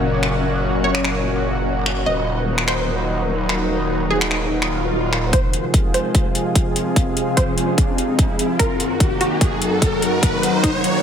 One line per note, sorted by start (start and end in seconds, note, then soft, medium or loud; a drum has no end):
0.00 2.05 F#1 medium
0.00 5.29 A#2 medium
0.00 2.03 C#3 medium
0.00 2.03 F#3 medium
0.00 2.03 C#4 medium
0.00 2.78 C#4 medium
0.00 5.29 F#4 medium
0.00 6.13 A#4 medium
0.00 0.15 C#5 medium
0.00 5.33 F#5 medium
0.23 finger snap medium
0.84 1.99 C#5 medium
0.95 finger snap medium
1.05 finger snap medium
1.86 finger snap medium
2.06 5.31 D#1 medium
2.06 5.30 D#3 medium
2.06 5.30 F#3 medium
2.06 5.87 D#4 medium
2.06 5.30 D#4 medium
2.06 2.60 D#5 medium
2.58 finger snap medium
2.68 3.41 C5 medium
2.68 finger snap medium
3.49 finger snap medium
4.11 5.25 G#4 medium
4.21 finger snap medium
4.31 finger snap medium
4.51 swell medium
4.62 finger snap medium
5.13 finger snap soft
5.33 8.56 C3 medium
5.33 8.56 F3 medium
5.33 8.56 G#3 medium
5.33 9.32 C4 medium
5.33 8.56 F4 medium
5.33 8.56 G#4 medium
5.33 5.86 C5 medium
5.33 kick medium
5.33 closed hi-hat medium
5.33 riser medium
5.53 closed hi-hat medium
5.73 9.89 G#4 medium
5.73 kick loud
5.73 closed hi-hat medium
5.94 6.68 C5 medium
5.94 closed hi-hat medium
6.15 kick medium
6.15 closed hi-hat medium
6.35 closed hi-hat medium
6.47 8.60 F5 medium
6.55 kick loud
6.55 closed hi-hat medium
6.76 closed hi-hat medium
6.96 kick loud
6.96 closed hi-hat medium
7.17 closed hi-hat medium
7.37 8.52 C5 medium
7.37 kick loud
7.37 closed hi-hat medium
7.58 closed hi-hat soft
7.78 kick loud
7.78 closed hi-hat medium
7.98 closed hi-hat medium
8.19 kick loud
8.19 closed hi-hat medium
8.39 closed hi-hat medium
8.59 11.03 F#2 medium
8.59 11.03 D#3 medium
8.59 11.03 F#3 medium
8.59 11.03 A#3 medium
8.59 11.03 F#4 medium
8.59 9.13 A#4 loud
8.59 11.03 A#4 medium
8.59 kick medium
8.59 closed hi-hat medium
8.80 closed hi-hat medium
8.86 11.03 D#4 medium
9.00 kick loud
9.00 closed hi-hat medium
9.16 11.03 F#5 medium
9.21 9.95 F#4 medium
9.21 closed hi-hat soft
9.38 11.03 A#4 medium
9.38 kick loud
9.38 closed hi-hat medium
9.62 closed hi-hat medium
9.82 kick loud
9.82 closed hi-hat medium
10.02 closed hi-hat medium
10.23 kick loud
10.23 closed hi-hat medium
10.43 closed hi-hat medium
10.63 11.03 D#4 medium
10.63 kick loud
10.63 closed hi-hat medium
10.84 closed hi-hat soft